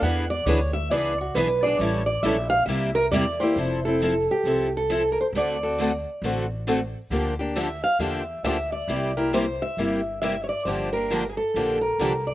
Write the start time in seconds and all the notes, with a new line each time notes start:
0.02 E2 E3 B3 D4 G#4 B4 F#5
0.30 D5
0.46 D2 E3 B3 D4 G#4 B4 C#5
0.73 E5
0.90 C#2 E3 B3 D4 G#4 B4 D5
1.21 F#4
1.35 B1 E3 B3 D4 G#4 B4
1.63 B3 D4 G#4 D5
1.79 A1 E3 G3 C#4 E4 A4 C#5
2.06 D5
2.23 A#1 E3 G3 C#4 E4 A4 E5
2.50 F5
2.66 C2 C3 G3 A#3 E4 G4 E5
2.95 A#4
3.11 E2 C3 G3 A#3 E4 G4 D5
3.40 A#3 E4 G4 C5
3.56 F1 F3 C4 E4 A4
3.85 C4 E4 A4
4.02 F3 C4 E4 A4
4.31 G4
4.44 C2 F3 C4 E4 A4
4.77 A4
4.90 F3 C4 E4 A4
5.12 A#4
5.21 C5
5.33 D2 D3 A3 C4 F#4 A4
5.37 D5
5.63 C4 F#4 A4
5.80 D3 A3 C4 F#4 A4
6.22 A1 D3 A3 C4 F#4 A4
6.67 D3 A3 C4 F#4 A4
7.10 D2 D3 F3 A#3 D4 G4
7.39 A#3 D4 G4
7.56 D3 F3 A#3 D4 G4 E5
7.84 F5
7.99 E2 D3 F3 A#3 D4 G4 E5
8.43 D2 D3 F3 A#3 D4 G4 E5
8.72 D5
8.88 C2 C3 G3 A#3 E4 G4
9.17 A#3 E4 G4 A#4
9.33 C3 G3 A#3 E4 G4 C5
9.62 E5
9.77 G1 C3 G3 A#3 E4 G4
10.22 C3 G3 A#3 E4 G4 E5
10.44 C#5
10.49 D5
10.65 G1 D3 F3 A#3 D4 G4 C5
10.93 A#3 D4 G4 A#4
11.10 D3 F3 A#3 D4 G4
11.29 G#4
11.37 A4
11.54 A#1 D3 F3 A#3 D4 G4
11.81 A#4
11.99 C2 D3 F3 A#3 D4 G4
12.27 D5